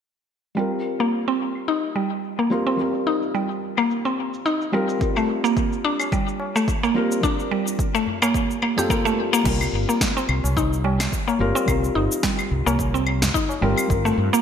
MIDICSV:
0, 0, Header, 1, 6, 480
1, 0, Start_track
1, 0, Tempo, 555556
1, 490, Time_signature, 4, 2, 24, 8
1, 12457, End_track
2, 0, Start_track
2, 0, Title_t, "Felt piano"
2, 0, Program_c, 0, 0
2, 473, Note_on_c, 0, 55, 63
2, 486, Note_on_c, 0, 60, 62
2, 497, Note_on_c, 0, 65, 58
2, 508, Note_on_c, 0, 70, 73
2, 666, Control_c, 0, 64, 127
2, 2136, Note_off_c, 0, 55, 0
2, 2142, Note_off_c, 0, 60, 0
2, 2148, Note_off_c, 0, 65, 0
2, 2153, Note_off_c, 0, 70, 0
2, 2160, Note_on_c, 0, 55, 85
2, 2167, Note_on_c, 0, 60, 78
2, 2171, Note_on_c, 0, 65, 82
2, 2178, Note_on_c, 0, 70, 91
2, 2379, Note_off_c, 0, 55, 0
2, 2383, Note_off_c, 0, 60, 0
2, 2385, Note_off_c, 0, 65, 0
2, 2388, Note_off_c, 0, 70, 0
2, 2392, Note_on_c, 0, 55, 67
2, 2403, Note_on_c, 0, 60, 60
2, 2415, Note_on_c, 0, 65, 59
2, 2427, Note_on_c, 0, 70, 76
2, 4055, Note_off_c, 0, 55, 0
2, 4061, Note_off_c, 0, 60, 0
2, 4067, Note_off_c, 0, 65, 0
2, 4073, Note_off_c, 0, 70, 0
2, 4079, Note_on_c, 0, 55, 84
2, 4084, Note_on_c, 0, 60, 79
2, 4092, Note_on_c, 0, 65, 75
2, 4097, Note_on_c, 0, 70, 98
2, 4297, Note_off_c, 0, 55, 0
2, 4302, Note_off_c, 0, 60, 0
2, 4305, Note_off_c, 0, 65, 0
2, 4308, Note_off_c, 0, 70, 0
2, 4310, Note_on_c, 0, 55, 70
2, 4322, Note_on_c, 0, 60, 62
2, 4334, Note_on_c, 0, 65, 63
2, 4342, Control_c, 0, 64, 0
2, 4345, Note_on_c, 0, 70, 76
2, 4491, Control_c, 0, 64, 127
2, 5974, Note_off_c, 0, 55, 0
2, 5980, Note_off_c, 0, 60, 0
2, 5986, Note_off_c, 0, 65, 0
2, 5992, Note_off_c, 0, 70, 0
2, 5998, Note_on_c, 0, 55, 92
2, 6003, Note_on_c, 0, 60, 79
2, 6009, Note_on_c, 0, 65, 80
2, 6015, Note_on_c, 0, 70, 97
2, 6217, Note_off_c, 0, 55, 0
2, 6221, Note_off_c, 0, 60, 0
2, 6224, Note_off_c, 0, 65, 0
2, 6227, Note_off_c, 0, 70, 0
2, 6230, Note_on_c, 0, 55, 69
2, 6242, Note_on_c, 0, 60, 66
2, 6253, Note_on_c, 0, 65, 66
2, 6264, Note_on_c, 0, 70, 82
2, 7547, Note_off_c, 0, 55, 0
2, 7553, Note_off_c, 0, 60, 0
2, 7558, Note_off_c, 0, 65, 0
2, 7564, Note_off_c, 0, 70, 0
2, 7572, Note_on_c, 0, 55, 70
2, 7578, Note_on_c, 0, 60, 68
2, 7583, Note_on_c, 0, 65, 69
2, 7590, Note_on_c, 0, 69, 85
2, 7659, Note_off_c, 0, 55, 0
2, 7662, Note_off_c, 0, 60, 0
2, 7664, Note_off_c, 0, 65, 0
2, 7668, Note_off_c, 0, 69, 0
2, 7680, Note_on_c, 0, 55, 74
2, 7685, Note_on_c, 0, 60, 65
2, 7690, Note_on_c, 0, 65, 66
2, 7697, Note_on_c, 0, 70, 82
2, 8137, Note_off_c, 0, 55, 0
2, 8142, Note_off_c, 0, 60, 0
2, 8144, Note_off_c, 0, 65, 0
2, 8148, Note_off_c, 0, 70, 0
2, 8150, Note_on_c, 0, 55, 69
2, 8163, Note_on_c, 0, 60, 64
2, 8173, Note_on_c, 0, 65, 61
2, 8181, Control_c, 0, 64, 0
2, 8186, Note_on_c, 0, 70, 78
2, 8359, Control_c, 0, 64, 127
2, 9814, Note_off_c, 0, 55, 0
2, 9821, Note_off_c, 0, 60, 0
2, 9826, Note_off_c, 0, 65, 0
2, 9832, Note_off_c, 0, 70, 0
2, 9840, Note_on_c, 0, 55, 93
2, 9846, Note_on_c, 0, 60, 85
2, 9852, Note_on_c, 0, 65, 88
2, 9857, Note_on_c, 0, 70, 104
2, 10059, Note_off_c, 0, 55, 0
2, 10062, Note_off_c, 0, 60, 0
2, 10065, Note_off_c, 0, 65, 0
2, 10068, Note_off_c, 0, 70, 0
2, 10071, Note_on_c, 0, 55, 67
2, 10082, Note_on_c, 0, 60, 66
2, 10094, Note_on_c, 0, 65, 64
2, 10105, Note_on_c, 0, 70, 77
2, 11735, Note_off_c, 0, 55, 0
2, 11740, Note_off_c, 0, 60, 0
2, 11747, Note_off_c, 0, 65, 0
2, 11752, Note_off_c, 0, 70, 0
2, 11760, Note_on_c, 0, 55, 91
2, 11766, Note_on_c, 0, 60, 82
2, 11772, Note_on_c, 0, 65, 81
2, 11777, Note_on_c, 0, 70, 101
2, 11977, Note_off_c, 0, 55, 0
2, 11982, Note_off_c, 0, 60, 0
2, 11985, Note_off_c, 0, 65, 0
2, 11988, Note_off_c, 0, 70, 0
2, 11990, Note_on_c, 0, 55, 72
2, 12002, Note_on_c, 0, 60, 70
2, 12019, Control_c, 0, 64, 0
2, 12025, Note_on_c, 0, 70, 76
2, 12174, Control_c, 0, 64, 127
2, 12457, Note_off_c, 0, 55, 0
2, 12457, Note_off_c, 0, 60, 0
2, 12457, Note_off_c, 0, 70, 0
2, 12457, End_track
3, 0, Start_track
3, 0, Title_t, "Synth pluck"
3, 0, Program_c, 1, 84
3, 491, Note_on_c, 1, 55, 65
3, 850, Note_off_c, 1, 55, 0
3, 864, Note_on_c, 1, 58, 93
3, 965, Note_off_c, 1, 58, 0
3, 1103, Note_on_c, 1, 60, 90
3, 1439, Note_off_c, 1, 60, 0
3, 1452, Note_on_c, 1, 63, 90
3, 1680, Note_off_c, 1, 63, 0
3, 1689, Note_on_c, 1, 55, 72
3, 2050, Note_off_c, 1, 55, 0
3, 2063, Note_on_c, 1, 58, 96
3, 2165, Note_off_c, 1, 58, 0
3, 2303, Note_on_c, 1, 60, 90
3, 2639, Note_off_c, 1, 60, 0
3, 2650, Note_on_c, 1, 63, 93
3, 2879, Note_off_c, 1, 63, 0
3, 2890, Note_on_c, 1, 55, 81
3, 3250, Note_off_c, 1, 55, 0
3, 3264, Note_on_c, 1, 58, 102
3, 3365, Note_off_c, 1, 58, 0
3, 3502, Note_on_c, 1, 60, 87
3, 3838, Note_off_c, 1, 60, 0
3, 3851, Note_on_c, 1, 63, 105
3, 4080, Note_off_c, 1, 63, 0
3, 4089, Note_on_c, 1, 55, 72
3, 4330, Note_off_c, 1, 55, 0
3, 4464, Note_on_c, 1, 57, 99
3, 4565, Note_off_c, 1, 57, 0
3, 4700, Note_on_c, 1, 58, 97
3, 5038, Note_off_c, 1, 58, 0
3, 5050, Note_on_c, 1, 62, 99
3, 5279, Note_off_c, 1, 62, 0
3, 5292, Note_on_c, 1, 55, 75
3, 5651, Note_off_c, 1, 55, 0
3, 5665, Note_on_c, 1, 57, 98
3, 5766, Note_off_c, 1, 57, 0
3, 5904, Note_on_c, 1, 58, 98
3, 6240, Note_off_c, 1, 58, 0
3, 6250, Note_on_c, 1, 62, 92
3, 6479, Note_off_c, 1, 62, 0
3, 6492, Note_on_c, 1, 55, 71
3, 6851, Note_off_c, 1, 55, 0
3, 6865, Note_on_c, 1, 57, 98
3, 6966, Note_off_c, 1, 57, 0
3, 7104, Note_on_c, 1, 58, 101
3, 7439, Note_off_c, 1, 58, 0
3, 7452, Note_on_c, 1, 58, 79
3, 7527, Note_off_c, 1, 58, 0
3, 7583, Note_on_c, 1, 67, 76
3, 7684, Note_off_c, 1, 67, 0
3, 7691, Note_on_c, 1, 58, 86
3, 7810, Note_off_c, 1, 58, 0
3, 7822, Note_on_c, 1, 57, 94
3, 7924, Note_off_c, 1, 57, 0
3, 8061, Note_on_c, 1, 58, 99
3, 8164, Note_off_c, 1, 58, 0
3, 8168, Note_on_c, 1, 55, 74
3, 8529, Note_off_c, 1, 55, 0
3, 8543, Note_on_c, 1, 58, 93
3, 8645, Note_off_c, 1, 58, 0
3, 8784, Note_on_c, 1, 60, 94
3, 9120, Note_off_c, 1, 60, 0
3, 9131, Note_on_c, 1, 63, 96
3, 9360, Note_off_c, 1, 63, 0
3, 9370, Note_on_c, 1, 55, 76
3, 9730, Note_off_c, 1, 55, 0
3, 9742, Note_on_c, 1, 58, 98
3, 9844, Note_off_c, 1, 58, 0
3, 9981, Note_on_c, 1, 60, 99
3, 10318, Note_off_c, 1, 60, 0
3, 10327, Note_on_c, 1, 63, 95
3, 10558, Note_off_c, 1, 63, 0
3, 10568, Note_on_c, 1, 55, 90
3, 10929, Note_off_c, 1, 55, 0
3, 10941, Note_on_c, 1, 58, 98
3, 11044, Note_off_c, 1, 58, 0
3, 11181, Note_on_c, 1, 60, 91
3, 11518, Note_off_c, 1, 60, 0
3, 11527, Note_on_c, 1, 63, 99
3, 11758, Note_off_c, 1, 63, 0
3, 11768, Note_on_c, 1, 55, 78
3, 12009, Note_off_c, 1, 55, 0
3, 12141, Note_on_c, 1, 57, 102
3, 12243, Note_off_c, 1, 57, 0
3, 12382, Note_on_c, 1, 58, 102
3, 12457, Note_off_c, 1, 58, 0
3, 12457, End_track
4, 0, Start_track
4, 0, Title_t, "Fretless electric bass"
4, 0, Program_c, 2, 35
4, 8170, Note_on_c, 2, 36, 93
4, 8344, Note_off_c, 2, 36, 0
4, 8405, Note_on_c, 2, 31, 86
4, 8500, Note_off_c, 2, 31, 0
4, 8888, Note_on_c, 2, 36, 81
4, 8981, Note_off_c, 2, 36, 0
4, 9020, Note_on_c, 2, 36, 84
4, 9555, Note_off_c, 2, 36, 0
4, 9850, Note_on_c, 2, 31, 83
4, 9942, Note_off_c, 2, 31, 0
4, 10091, Note_on_c, 2, 36, 90
4, 10264, Note_off_c, 2, 36, 0
4, 10329, Note_on_c, 2, 31, 83
4, 10421, Note_off_c, 2, 31, 0
4, 10811, Note_on_c, 2, 36, 82
4, 10902, Note_off_c, 2, 36, 0
4, 10941, Note_on_c, 2, 36, 85
4, 11476, Note_off_c, 2, 36, 0
4, 11768, Note_on_c, 2, 31, 86
4, 11861, Note_off_c, 2, 31, 0
4, 12010, Note_on_c, 2, 31, 95
4, 12184, Note_off_c, 2, 31, 0
4, 12247, Note_on_c, 2, 43, 89
4, 12341, Note_off_c, 2, 43, 0
4, 12457, End_track
5, 0, Start_track
5, 0, Title_t, "Tabla"
5, 5180, Note_on_c, 9, 60, 64
5, 5267, Note_off_c, 9, 60, 0
5, 5526, Note_on_c, 9, 60, 60
5, 5612, Note_off_c, 9, 60, 0
5, 5904, Note_on_c, 9, 60, 67
5, 5904, Note_on_c, 9, 63, 51
5, 5990, Note_off_c, 9, 60, 0
5, 5991, Note_off_c, 9, 63, 0
5, 6142, Note_on_c, 9, 63, 44
5, 6228, Note_off_c, 9, 63, 0
5, 6862, Note_on_c, 9, 63, 36
5, 6949, Note_off_c, 9, 63, 0
5, 6969, Note_on_c, 9, 64, 79
5, 7056, Note_off_c, 9, 64, 0
5, 7103, Note_on_c, 9, 60, 68
5, 7190, Note_off_c, 9, 60, 0
5, 7440, Note_on_c, 9, 63, 55
5, 7527, Note_off_c, 9, 63, 0
5, 7586, Note_on_c, 9, 64, 81
5, 7672, Note_off_c, 9, 64, 0
5, 7817, Note_on_c, 9, 63, 60
5, 7824, Note_on_c, 9, 60, 53
5, 7903, Note_off_c, 9, 63, 0
5, 7910, Note_off_c, 9, 60, 0
5, 8062, Note_on_c, 9, 63, 48
5, 8149, Note_off_c, 9, 63, 0
5, 9019, Note_on_c, 9, 60, 72
5, 9106, Note_off_c, 9, 60, 0
5, 9368, Note_on_c, 9, 60, 65
5, 9454, Note_off_c, 9, 60, 0
5, 9743, Note_on_c, 9, 63, 62
5, 9747, Note_on_c, 9, 60, 69
5, 9829, Note_off_c, 9, 63, 0
5, 9834, Note_off_c, 9, 60, 0
5, 9979, Note_on_c, 9, 63, 55
5, 10066, Note_off_c, 9, 63, 0
5, 10809, Note_on_c, 9, 64, 78
5, 10896, Note_off_c, 9, 64, 0
5, 10944, Note_on_c, 9, 60, 82
5, 11031, Note_off_c, 9, 60, 0
5, 11290, Note_on_c, 9, 63, 60
5, 11376, Note_off_c, 9, 63, 0
5, 11429, Note_on_c, 9, 64, 89
5, 11515, Note_off_c, 9, 64, 0
5, 11656, Note_on_c, 9, 60, 66
5, 11661, Note_on_c, 9, 63, 59
5, 11743, Note_off_c, 9, 60, 0
5, 11747, Note_off_c, 9, 63, 0
5, 11905, Note_on_c, 9, 63, 46
5, 11991, Note_off_c, 9, 63, 0
5, 12457, End_track
6, 0, Start_track
6, 0, Title_t, "Drums"
6, 623, Note_on_c, 9, 75, 53
6, 631, Note_on_c, 9, 69, 31
6, 709, Note_off_c, 9, 75, 0
6, 717, Note_off_c, 9, 69, 0
6, 1341, Note_on_c, 9, 75, 64
6, 1349, Note_on_c, 9, 69, 57
6, 1427, Note_off_c, 9, 75, 0
6, 1435, Note_off_c, 9, 69, 0
6, 1590, Note_on_c, 9, 69, 28
6, 1676, Note_off_c, 9, 69, 0
6, 1829, Note_on_c, 9, 69, 60
6, 1915, Note_off_c, 9, 69, 0
6, 1936, Note_on_c, 9, 69, 48
6, 2023, Note_off_c, 9, 69, 0
6, 2070, Note_on_c, 9, 69, 29
6, 2156, Note_off_c, 9, 69, 0
6, 2309, Note_on_c, 9, 69, 61
6, 2395, Note_off_c, 9, 69, 0
6, 2416, Note_on_c, 9, 69, 45
6, 2503, Note_off_c, 9, 69, 0
6, 2548, Note_on_c, 9, 69, 30
6, 2635, Note_off_c, 9, 69, 0
6, 2788, Note_on_c, 9, 69, 63
6, 2874, Note_off_c, 9, 69, 0
6, 2896, Note_on_c, 9, 69, 53
6, 2982, Note_off_c, 9, 69, 0
6, 3029, Note_on_c, 9, 69, 34
6, 3116, Note_off_c, 9, 69, 0
6, 3260, Note_on_c, 9, 75, 64
6, 3269, Note_on_c, 9, 69, 61
6, 3347, Note_off_c, 9, 75, 0
6, 3355, Note_off_c, 9, 69, 0
6, 3376, Note_on_c, 9, 69, 53
6, 3462, Note_off_c, 9, 69, 0
6, 3509, Note_on_c, 9, 69, 31
6, 3595, Note_off_c, 9, 69, 0
6, 3748, Note_on_c, 9, 69, 64
6, 3835, Note_off_c, 9, 69, 0
6, 3854, Note_on_c, 9, 69, 49
6, 3941, Note_off_c, 9, 69, 0
6, 3987, Note_on_c, 9, 69, 33
6, 4074, Note_off_c, 9, 69, 0
6, 4227, Note_on_c, 9, 69, 65
6, 4313, Note_off_c, 9, 69, 0
6, 4329, Note_on_c, 9, 36, 102
6, 4335, Note_on_c, 9, 69, 47
6, 4416, Note_off_c, 9, 36, 0
6, 4421, Note_off_c, 9, 69, 0
6, 4460, Note_on_c, 9, 75, 50
6, 4468, Note_on_c, 9, 69, 31
6, 4547, Note_off_c, 9, 75, 0
6, 4555, Note_off_c, 9, 69, 0
6, 4708, Note_on_c, 9, 69, 67
6, 4794, Note_off_c, 9, 69, 0
6, 4810, Note_on_c, 9, 36, 105
6, 4815, Note_on_c, 9, 69, 51
6, 4896, Note_off_c, 9, 36, 0
6, 4901, Note_off_c, 9, 69, 0
6, 4948, Note_on_c, 9, 69, 33
6, 5035, Note_off_c, 9, 69, 0
6, 5180, Note_on_c, 9, 75, 66
6, 5188, Note_on_c, 9, 69, 63
6, 5266, Note_off_c, 9, 75, 0
6, 5274, Note_off_c, 9, 69, 0
6, 5290, Note_on_c, 9, 36, 101
6, 5296, Note_on_c, 9, 69, 58
6, 5376, Note_off_c, 9, 36, 0
6, 5382, Note_off_c, 9, 69, 0
6, 5429, Note_on_c, 9, 69, 29
6, 5516, Note_off_c, 9, 69, 0
6, 5670, Note_on_c, 9, 69, 61
6, 5756, Note_off_c, 9, 69, 0
6, 5770, Note_on_c, 9, 36, 99
6, 5778, Note_on_c, 9, 69, 52
6, 5856, Note_off_c, 9, 36, 0
6, 5864, Note_off_c, 9, 69, 0
6, 5911, Note_on_c, 9, 69, 34
6, 5997, Note_off_c, 9, 69, 0
6, 6149, Note_on_c, 9, 69, 66
6, 6235, Note_off_c, 9, 69, 0
6, 6250, Note_on_c, 9, 36, 102
6, 6256, Note_on_c, 9, 69, 47
6, 6336, Note_off_c, 9, 36, 0
6, 6342, Note_off_c, 9, 69, 0
6, 6390, Note_on_c, 9, 69, 31
6, 6476, Note_off_c, 9, 69, 0
6, 6630, Note_on_c, 9, 69, 67
6, 6716, Note_off_c, 9, 69, 0
6, 6730, Note_on_c, 9, 36, 108
6, 6736, Note_on_c, 9, 69, 53
6, 6816, Note_off_c, 9, 36, 0
6, 6823, Note_off_c, 9, 69, 0
6, 6870, Note_on_c, 9, 69, 32
6, 6957, Note_off_c, 9, 69, 0
6, 7102, Note_on_c, 9, 75, 65
6, 7110, Note_on_c, 9, 69, 64
6, 7188, Note_off_c, 9, 75, 0
6, 7196, Note_off_c, 9, 69, 0
6, 7209, Note_on_c, 9, 36, 98
6, 7217, Note_on_c, 9, 69, 55
6, 7296, Note_off_c, 9, 36, 0
6, 7304, Note_off_c, 9, 69, 0
6, 7350, Note_on_c, 9, 69, 31
6, 7437, Note_off_c, 9, 69, 0
6, 7449, Note_on_c, 9, 75, 52
6, 7535, Note_off_c, 9, 75, 0
6, 7591, Note_on_c, 9, 69, 62
6, 7677, Note_off_c, 9, 69, 0
6, 7690, Note_on_c, 9, 36, 106
6, 7698, Note_on_c, 9, 69, 55
6, 7776, Note_off_c, 9, 36, 0
6, 7784, Note_off_c, 9, 69, 0
6, 7830, Note_on_c, 9, 69, 32
6, 7917, Note_off_c, 9, 69, 0
6, 8069, Note_on_c, 9, 69, 68
6, 8156, Note_off_c, 9, 69, 0
6, 8169, Note_on_c, 9, 49, 81
6, 8170, Note_on_c, 9, 36, 100
6, 8177, Note_on_c, 9, 69, 45
6, 8255, Note_off_c, 9, 49, 0
6, 8256, Note_off_c, 9, 36, 0
6, 8263, Note_off_c, 9, 69, 0
6, 8302, Note_on_c, 9, 75, 70
6, 8310, Note_on_c, 9, 69, 31
6, 8389, Note_off_c, 9, 75, 0
6, 8397, Note_off_c, 9, 69, 0
6, 8550, Note_on_c, 9, 69, 62
6, 8636, Note_off_c, 9, 69, 0
6, 8649, Note_on_c, 9, 36, 102
6, 8650, Note_on_c, 9, 38, 73
6, 8658, Note_on_c, 9, 69, 54
6, 8736, Note_off_c, 9, 36, 0
6, 8736, Note_off_c, 9, 38, 0
6, 8744, Note_off_c, 9, 69, 0
6, 8791, Note_on_c, 9, 69, 32
6, 8877, Note_off_c, 9, 69, 0
6, 8889, Note_on_c, 9, 75, 74
6, 8975, Note_off_c, 9, 75, 0
6, 9031, Note_on_c, 9, 69, 63
6, 9118, Note_off_c, 9, 69, 0
6, 9130, Note_on_c, 9, 36, 91
6, 9138, Note_on_c, 9, 69, 55
6, 9216, Note_off_c, 9, 36, 0
6, 9225, Note_off_c, 9, 69, 0
6, 9273, Note_on_c, 9, 69, 32
6, 9359, Note_off_c, 9, 69, 0
6, 9504, Note_on_c, 9, 38, 78
6, 9504, Note_on_c, 9, 75, 75
6, 9512, Note_on_c, 9, 69, 60
6, 9590, Note_off_c, 9, 38, 0
6, 9590, Note_off_c, 9, 75, 0
6, 9598, Note_off_c, 9, 69, 0
6, 9610, Note_on_c, 9, 36, 100
6, 9618, Note_on_c, 9, 69, 57
6, 9697, Note_off_c, 9, 36, 0
6, 9704, Note_off_c, 9, 69, 0
6, 9751, Note_on_c, 9, 69, 32
6, 9837, Note_off_c, 9, 69, 0
6, 9991, Note_on_c, 9, 69, 61
6, 10078, Note_off_c, 9, 69, 0
6, 10089, Note_on_c, 9, 75, 67
6, 10090, Note_on_c, 9, 36, 103
6, 10097, Note_on_c, 9, 69, 50
6, 10176, Note_off_c, 9, 75, 0
6, 10177, Note_off_c, 9, 36, 0
6, 10184, Note_off_c, 9, 69, 0
6, 10231, Note_on_c, 9, 69, 33
6, 10317, Note_off_c, 9, 69, 0
6, 10469, Note_on_c, 9, 69, 72
6, 10556, Note_off_c, 9, 69, 0
6, 10568, Note_on_c, 9, 38, 74
6, 10570, Note_on_c, 9, 36, 106
6, 10576, Note_on_c, 9, 69, 52
6, 10655, Note_off_c, 9, 38, 0
6, 10657, Note_off_c, 9, 36, 0
6, 10663, Note_off_c, 9, 69, 0
6, 10702, Note_on_c, 9, 75, 75
6, 10710, Note_on_c, 9, 69, 33
6, 10789, Note_off_c, 9, 75, 0
6, 10797, Note_off_c, 9, 69, 0
6, 10950, Note_on_c, 9, 69, 60
6, 11036, Note_off_c, 9, 69, 0
6, 11050, Note_on_c, 9, 36, 97
6, 11058, Note_on_c, 9, 69, 57
6, 11137, Note_off_c, 9, 36, 0
6, 11144, Note_off_c, 9, 69, 0
6, 11191, Note_on_c, 9, 69, 34
6, 11277, Note_off_c, 9, 69, 0
6, 11289, Note_on_c, 9, 75, 72
6, 11375, Note_off_c, 9, 75, 0
6, 11423, Note_on_c, 9, 38, 75
6, 11431, Note_on_c, 9, 69, 60
6, 11510, Note_off_c, 9, 38, 0
6, 11518, Note_off_c, 9, 69, 0
6, 11530, Note_on_c, 9, 36, 102
6, 11538, Note_on_c, 9, 69, 53
6, 11617, Note_off_c, 9, 36, 0
6, 11624, Note_off_c, 9, 69, 0
6, 11671, Note_on_c, 9, 69, 33
6, 11757, Note_off_c, 9, 69, 0
6, 11902, Note_on_c, 9, 75, 74
6, 11910, Note_on_c, 9, 69, 66
6, 11988, Note_off_c, 9, 75, 0
6, 11996, Note_off_c, 9, 69, 0
6, 12010, Note_on_c, 9, 36, 112
6, 12016, Note_on_c, 9, 69, 48
6, 12096, Note_off_c, 9, 36, 0
6, 12102, Note_off_c, 9, 69, 0
6, 12149, Note_on_c, 9, 69, 33
6, 12235, Note_off_c, 9, 69, 0
6, 12389, Note_on_c, 9, 69, 68
6, 12457, Note_off_c, 9, 69, 0
6, 12457, End_track
0, 0, End_of_file